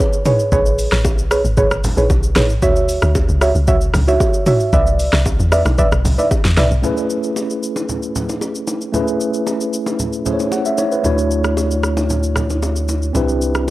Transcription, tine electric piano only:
6.82 8.89 A3 medium
6.82 8.90 C#4 medium
6.82 8.90 E4 medium
6.82 8.91 G#4 medium
6.82 8.91 B4 medium
8.92 10.22 A3 medium
8.92 10.23 C#4 medium
8.92 10.23 E4 medium
8.92 10.24 G#4 medium
8.92 10.24 B4 medium
10.25 11.02 A3 medium
10.25 11.04 C#4 soft
10.25 11.03 E4 soft
10.25 11.05 G#4 soft
10.25 10.33 C5 soft
10.33 10.56 C#5 medium
10.52 10.65 F#5 medium
10.66 10.78 E5 medium
10.78 10.91 C#5 medium
10.92 11.17 B4 medium
11.03 13.10 A3 medium
11.03 13.11 D4 medium
11.03 13.11 E4 medium
11.03 13.11 F#4 medium
11.03 13.12 C#5 medium
13.13 13.70 C4 medium
13.13 13.70 D4 medium
13.13 13.70 E4 medium
13.13 13.70 G4 medium
13.13 13.70 B4 medium

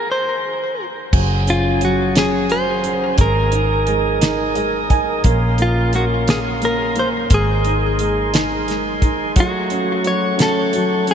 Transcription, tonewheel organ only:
1.13 3.17 C#4 soft
1.13 3.17 G#4 medium
1.13 3.17 G#5 soft
3.19 9.32 A#4 medium
3.19 5.23 D#5 soft
3.19 5.23 G#5 soft
3.19 5.23 D#6 medium
5.25 7.28 C#4 medium
5.25 7.29 F5 medium
5.25 9.32 C6 medium
7.31 9.34 D#5 medium
7.31 9.35 G#5 medium
9.36 11.14 A3 medium
9.36 11.14 C#5 medium
9.36 11.14 F#5 soft
9.36 11.14 C#6 medium

